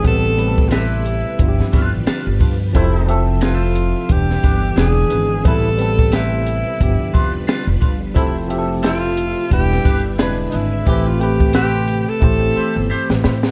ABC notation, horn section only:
X:1
M:4/4
L:1/16
Q:"Swing 16ths" 1/4=89
K:Am
V:1 name="Horn section"
z16 | [C,A,E]3 z12 z | [C,EB]2 z12 z2 | [C,A,E]2 z12 z2 |
[E,CG]2 z12 z2 |]